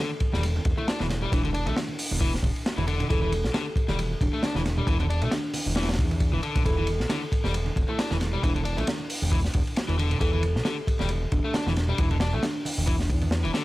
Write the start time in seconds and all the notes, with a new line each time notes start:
0.20 kick, ride, muted conga
0.33 E1 G3, snare, high conga
0.43 ride
0.56 muted conga
0.65 E1, kick, ride, high conga
0.78 A3 E4, muted conga
0.88 D4, snare, ride
1.00 E1 E3, snare, high conga
1.09 snare, ride, muted conga
1.22 G3, low conga
1.32 E1 E3 D4, kick, ride, muted conga
1.44 D3, ride, high conga
1.54 D4, ride
1.66 B1 A3, ride, muted conga
1.76 snare, ride, high conga
1.89 muted conga
1.99 open hi-hat
2.11 E1, high conga
2.21 E3, kick, ride, muted conga
2.34 snare
2.42 E1, kick, ride, muted conga, high conga
2.56 ride
2.66 snare, ride
2.77 E1 E3, ride, muted conga, high conga
2.87 D3, ride
3.00 ride, muted conga, low conga
3.10 E1 E3 A4, kick, ride
3.22 E3 A4, high conga
3.32 ride, muted conga
3.44 B1, snare
3.54 D3 G4, snare, ride, muted conga, high conga
3.76 kick, ride
3.88 E1 G3, snare, muted conga, high conga
3.99 ride
4.11 muted conga
4.21 E1 D4, kick, ride, high conga
4.33 A3 D4
4.43 D4, snare, ride, muted conga
4.55 E1 E3, snare, high conga
4.66 snare, ride, muted conga
4.77 G3, low conga
4.87 E1 E3, kick, ride
5.00 D3, ride, muted conga, high conga
5.10 D4, ride
5.22 B1 A3, ride, muted conga
5.31 D4, snare, ride, high conga
5.45 D4
5.54 open hi-hat, muted conga
5.66 E1, high conga
5.76 E3, snare, ride, muted conga
5.83 snare, ride
5.89 snare, ride
5.93 snare, ride
5.99 E2, kick, ride, high conga
6.11 ride, muted conga
6.20 kick, ride
6.33 E1 E3, muted conga, high conga
6.43 D3, ride
6.55 kick, ride, low conga
6.65 E1 E3 A4, kick, ride
6.78 E3 A4, muted conga, high conga
6.87 ride
7.00 B1, snare
7.09 D3, snare, ride, muted conga, high conga
7.32 kick, ride, muted conga
7.44 E1 G3, snare, high conga
7.54 ride
7.66 muted conga
7.76 E1, kick, ride, high conga
7.88 A3 E4, muted conga
7.98 D4, snare, ride
8.11 E1 E3, snare, high conga
8.20 snare, ride, muted conga
8.33 G3, low conga
8.42 E1 E3 D4, kick, ride, muted conga
8.55 D3, ride, high conga
8.65 D4, ride
8.77 B1 A3, ride, muted conga
8.87 snare, ride, high conga
9.00 muted conga
9.10 open hi-hat
9.22 E1, high conga
9.32 E3, kick, ride, muted conga
9.45 snare
9.54 E1, kick, ride, muted conga, high conga
9.67 ride
9.76 snare, ride
9.88 E1 E3, ride, muted conga, high conga
9.98 D3, ride
10.11 ride, muted conga, low conga
10.20 E1 E3 A4, kick, ride
10.33 E3 A4, high conga
10.43 ride, muted conga
10.55 B1, snare
10.65 D3 G4, snare, ride, muted conga, high conga
10.87 kick, ride
10.99 E1 G3, snare, muted conga, high conga
11.09 ride
11.22 muted conga
11.32 E1 D4, kick, ride, high conga
11.44 A3 D4
11.53 D4, snare, ride, muted conga
11.67 E1 E3, snare, high conga
11.76 snare, ride, muted conga
11.88 G3, low conga
11.98 E1 E3, kick, ride
12.11 D3, ride, muted conga, high conga
12.20 D4, snare, ride
12.33 B1 A3, muted conga
12.42 D4, snare, ride, high conga
12.55 D4
12.65 open hi-hat, muted conga
12.78 E1, high conga
12.87 E3, kick, ride, muted conga
13.00 snare
13.09 E2, kick, ride, high conga
13.21 ride, muted conga
13.31 snare, ride
13.44 E1 E3, ride, muted conga, high conga
13.54 D3, snare, ride